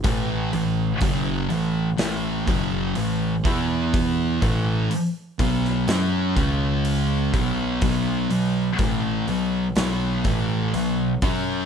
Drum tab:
HH |o-o-o-o-o-o-o-o-|o-o-o-o-o-o-o-o-|o-o-o-o-o-o-o-o-|
SD |--------o-------|-------oo-------|--------o-------|
BD |o---o-----o---o-|o-o---o---o---o-|o---o-----o---o-|